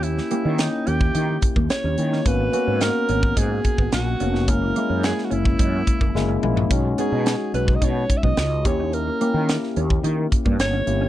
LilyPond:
<<
  \new Staff \with { instrumentName = "Alto saxophone" } { \time 4/4 \key dis \phrygian \tempo 4 = 108 e'4 dis'8 g'4 r8 cis''4 | b'4 ais'4 gis'4 fis'4 | ais'4 gis'16. fis'32 e'2 r8 | r8 gis'4 b'16. dis''32 cis''8~ cis''32 e''32 dis''8. cis''8 |
ais'4. r4. cis''4 | }
  \new Staff \with { instrumentName = "Clean electric guitar" } { \time 4/4 \key dis \phrygian r8 ais16 cis'16 r8 cis'16 r16 dis'16 r8 ais16 r16 cis'16 r16 cis'16 | r8 b16 cis'16 r8 cis'16 r16 dis'16 r8 b16 r8 cis'16 dis'16 | r8 ais16 cis'16 r8 cis'16 r16 dis'16 r8 ais16 r16 cis'16 r16 cis'16 | r8 b16 cis'16 r8 cis'16 r16 dis'16 r8 b16 r8 cis'16 dis'16 |
r8 ais16 cis'16 r8 cis'16 r16 dis'16 r8 ais16 r16 cis'16 r16 cis'16 | }
  \new Staff \with { instrumentName = "Tine electric piano" } { \time 4/4 \key dis \phrygian <ais cis' e' g'>8 <ais cis' e' g'>4.~ <ais cis' e' g'>16 r4 r16 <ais cis' e' g'>8 | <ais b cis' fis'>8 <ais b cis' fis'>4.~ <ais b cis' fis'>16 r4 r16 <ais b cis' fis'>8 | <gis ais cis' e'>8 <gis ais cis' e'>4.~ <gis ais cis' e'>16 r8. <gis ais cis' e'>8 <gis ais cis' e'>8 | <gis cis' dis' fis'>8 <gis cis' dis' fis'>4.~ <gis cis' dis' fis'>16 r4 r16 <ais cis' e' g'>8~ |
<ais cis' e' g'>8 <ais cis' e' g'>4.~ <ais cis' e' g'>16 r4 r16 <ais cis' e' g'>8 | }
  \new Staff \with { instrumentName = "Fretless electric bass" } { \clef bass \time 4/4 \key dis \phrygian dis,8 r16 dis8 r16 dis,8 dis8 r16 dis,16 r16 dis,16 dis8 | gis,,8 r16 gis,8 r16 gis,,8 gis,8 r16 gis,,16 ais,,8 eis,,8 | fis,,8 r16 fis,8 r16 fis,,8 fis,8 r16 fis,,16 fis,,8 ais,,8 | b,,8 r16 b,8 r16 b,,8 b,8 r16 b,,16 cis,8 dis,8~ |
dis,8 r16 dis8 r16 dis,8 dis8 r16 g,16 g,,8 g,,8 | }
  \new DrumStaff \with { instrumentName = "Drums" } \drummode { \time 4/4 hh16 sn16 hh8 <hh sn>8 hh16 bd16 hh8 <hh bd>16 bd16 <hh sn>8 hh16 sn16 | <hh bd>8 hh8 <hh sn>8 hh16 bd16 <hh bd>8 <hh bd>16 bd16 <hh sn>8 hh16 sn16 | <hh bd>8 hh8 <hh sn>16 sn16 hh16 bd16 <hh bd>8 <hh bd>16 bd16 sn8 toml16 tomfh16 | <hh bd>8 hh8 <hh sn>8 hh16 bd16 <hh bd>8 <hh bd>16 bd16 <hh sn>8 <hh bd>8 |
hh8 hh8 <hh sn>16 sn16 hh16 bd16 hh8 <hh bd>16 bd16 <hh sn>8 hh8 | }
>>